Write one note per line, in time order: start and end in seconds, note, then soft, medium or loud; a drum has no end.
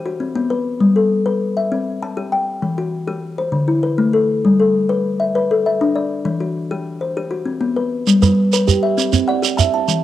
0.00 0.21 G4 medium
0.00 0.21 C5 medium
0.05 0.51 F#4 medium
0.20 0.66 C4 medium
0.35 0.66 B3 medium
0.50 0.96 B4 medium
0.80 1.11 G3 medium
0.96 1.42 A4 medium
1.26 1.57 B4 medium
1.57 1.87 E5 medium
1.72 2.02 C4 medium
2.03 2.48 A5 medium
2.17 2.48 G4 medium
2.32 2.78 G5 medium
2.62 2.93 E3 medium
2.78 3.23 F#4 medium
3.08 3.38 G4 medium
3.38 3.69 C5 medium
3.52 3.83 D3 medium
3.68 4.14 E4 medium
3.83 4.29 B4 medium
3.98 4.29 A3 medium
4.13 4.58 A4 medium
4.45 4.75 G3 medium
4.60 5.05 A4 medium
4.89 5.20 B4 medium
5.20 5.65 E5 medium
5.35 5.66 B4 medium
5.51 5.96 A4 medium
5.66 6.11 E5 medium
5.81 6.11 D4 medium
5.96 6.41 D5 medium
6.25 6.56 E3 medium
6.41 6.86 F#4 medium
6.71 7.01 G4 medium
7.01 7.47 C5 medium
7.17 7.47 G4 medium
7.31 7.77 F#4 medium
7.46 7.92 C4 medium
7.61 7.92 B3 medium
7.76 8.21 B4 medium
8.07 8.37 G3 medium
8.07 shekere medium
8.22 8.53 G3 medium
8.22 8.52 B4 medium
8.22 shekere medium
8.53 8.83 B4 medium
8.53 shekere medium
8.68 8.98 G4 medium
8.68 shekere medium
8.83 9.13 E5 medium
8.98 9.28 C4 medium
8.98 shekere medium
9.13 9.43 C4 medium
9.13 shekere medium
9.28 9.74 D5 medium
9.28 9.73 F#5 medium
9.42 9.73 G4 medium
9.42 shekere medium
9.57 9.88 E5 medium
9.57 10.03 A5 medium
9.57 shekere medium
9.74 10.04 A5 medium
9.88 10.04 E3 medium
9.88 shekere medium